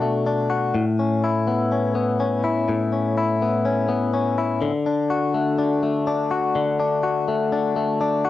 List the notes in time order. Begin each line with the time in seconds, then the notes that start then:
Already playing: B2 D4 F#4
0.02 A3
0.26 D4
0.50 F#4
0.74 A2
0.99 C#4
1.24 E4
1.47 B3
1.72 C#4
1.95 B3
2.20 C#4
2.44 E4
2.69 A2
2.92 C#4
3.18 E4
3.42 B3
3.65 C#4
3.89 B3
4.14 C#4
4.38 E4
4.62 D3
4.86 D4
5.10 F#4
5.34 A3
5.58 D4
5.83 A3
6.07 D4
6.31 F#4
6.55 D3
6.79 D4
7.03 F#4
7.28 A3
7.52 D4
7.76 A3
8.01 D4
8.25 F#4